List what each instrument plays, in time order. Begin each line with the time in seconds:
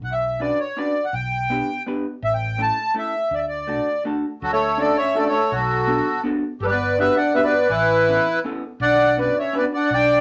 0.02 fretless electric bass B1, accordion F#5
0.12 accordion E5
0.40 hollow-body jazz guitar C#4 D4 F#4 B4, accordion D5
0.60 accordion C#5
0.76 hollow-body jazz guitar C#4 D4 F#4 B4, accordion D5
1.05 accordion F#5
1.13 fretless electric bass B1, accordion G5
1.50 hollow-body jazz guitar B3 D4 G4 B4
1.86 hollow-body jazz guitar B3 D4 G4 B4
2.22 fretless electric bass A1, accordion E5
2.34 accordion G5
2.58 hollow-body jazz guitar A3 C#4 E4 A4, accordion A5
2.94 hollow-body jazz guitar A3 C#4 E4 A4
2.98 accordion E5
3.31 fretless electric bass D2, accordion D5
3.38 accordion E5
3.48 accordion D5
3.67 hollow-body jazz guitar A3 D4 F#4 A4
4.05 hollow-body jazz guitar A3 D4 F#4 A4
4.42 fretless electric bass D2, clarinet F#3, accordion F#4 A4
4.52 clarinet A3, accordion A4 C#5
4.78 clarinet A3, hollow-body jazz guitar C#4 D4 F#4 A4, accordion A4 D5
4.97 clarinet C#4, accordion C#5 E5
5.15 clarinet A3, hollow-body jazz guitar C#4 D4 F#4 A4, accordion A4 D5
5.26 clarinet A3, accordion A4 C#5
5.51 fretless electric bass B1, accordion F#4 A4
5.56 clarinet F#3
5.87 hollow-body jazz guitar B3 D4 F#4 A4
6.24 hollow-body jazz guitar B3 D4 F#4 A4
6.60 fretless electric bass G1, accordion G4 A4
6.64 clarinet F#3 G3, accordion G4 B4
6.69 clarinet G3 B3, accordion B4 D5
6.98 hollow-body jazz guitar B3 D4 F#4 G4, clarinet B3, accordion B4 E5
7.16 clarinet D4, accordion D5 F#5
7.34 clarinet B3, hollow-body jazz guitar B3 D4 F#4 G4, accordion B4 E5
7.43 clarinet B3, accordion B4 D5
7.69 fretless electric bass A1, clarinet E3, accordion E4 B4
8.08 hollow-body jazz guitar B3 C#4 E4 A4
8.44 hollow-body jazz guitar B3 C#4 E4 A4
8.80 fretless electric bass B1, clarinet D4, accordion D5 F#5
9.18 clarinet B3, hollow-body jazz guitar C#4 D4 F#4 B4, accordion B4 D5
9.38 clarinet C#4, accordion C#5 E5
9.53 hollow-body jazz guitar C#4 D4 F#4 B4, accordion B4
9.58 clarinet B3, accordion D5
9.73 clarinet D4, accordion D5 F#5
9.90 fretless electric bass B1, clarinet D4, accordion D5
9.95 accordion G5